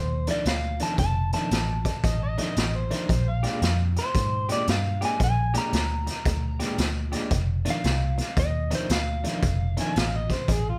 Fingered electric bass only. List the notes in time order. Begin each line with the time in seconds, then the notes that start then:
Already playing: D#2
0.45 D2
0.98 F1
1.51 A1
2.04 A1
2.57 A1
3.09 A#1
3.62 F2
4.15 G#2
4.68 G2
5.20 A#1
5.73 D2
6.26 D2
6.78 D2
7.31 F1
7.84 C2
8.37 D#2
8.89 D2
9.42 F1
9.96 A1
10.48 A1